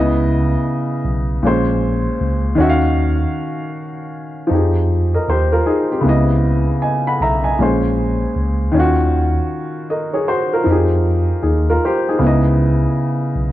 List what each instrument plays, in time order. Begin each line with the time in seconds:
Already playing: tine electric piano C#2, upright piano C#3 B3 E4 D#5
1.05 tine electric piano B1
1.43 tine electric piano A#1, upright piano A#2 G#3 C#4 C5
2.20 tine electric piano C#2
2.55 tine electric piano D#2, upright piano D#3 C#4
2.60 upright piano F#4 E5
2.69 upright piano F5
4.47 upright piano F3 D#4
4.51 tine electric piano F2, upright piano G4 G#4
5.14 upright piano A#4 D#5
5.28 tine electric piano D#2, upright piano G4 C5
5.52 upright piano F4 A#4
5.66 upright piano D#4 G#4
5.91 upright piano C4 G4
6.01 upright piano C#3 B3
6.05 tine electric piano C#2, upright piano E4 D#5
6.82 upright piano D#5 G#5
7.07 upright piano F#5 B5
7.21 tine electric piano B1, upright piano E5 A#5
7.44 upright piano D#5 G#5
7.59 tine electric piano A#1, upright piano A#2 G#3 C#4 C5
8.36 tine electric piano C#2
8.72 tine electric piano D#2, upright piano D#3 C#4
8.77 upright piano F4 F#4
9.90 upright piano A#4 D#5
10.13 upright piano G#4 C#5
10.28 upright piano F#4 C5
10.53 upright piano F4 A#4
10.64 tine electric piano F2, upright piano F3 D#4
10.69 upright piano G4 G#4
11.42 tine electric piano D#2, upright piano D#4 G#4
11.70 upright piano F4 A#4
11.85 upright piano G4 C5
12.09 upright piano D#4 G#4
12.19 tine electric piano C#2, upright piano C#3 B3
12.24 upright piano E4 D#5
13.35 tine electric piano B1